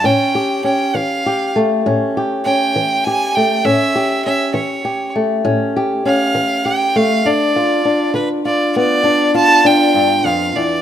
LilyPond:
<<
  \new Staff \with { instrumentName = "Fiddle" } { \time 12/8 \key a \dorian \tempo 4. = 67 g''4 g''8 f''4 r4. g''4 gis''8 g''8 | e''4 e''8 cis''4 r4. f''4 g''8 f''8 | d''4. b'8 d''8 d''4 a''8 g''4 f''8 d''8 | }
  \new Staff \with { instrumentName = "Steel-string acoustic guitar" } { \time 12/8 \key a \dorian << { cis'8 g'8 cis'4 g'8 a8 cis'8 g'8 cis'4 g'8 a8 | cis'8 g'8 cis'4 g'8 a8 cis'8 g'8 cis'4 g'8 a8 | d'8 f'8 d'4 f'8 b8 d'8 f'8 d'2 | } \\ { a,4 r8 e4 r8 a,4 r8 e4 r8 | a,4 r8 e4 r8 a,4 r8 e4 r8 | g,4 r8 d4 r8 g,4 r8 g,8 f,8 e,8 | } >> }
>>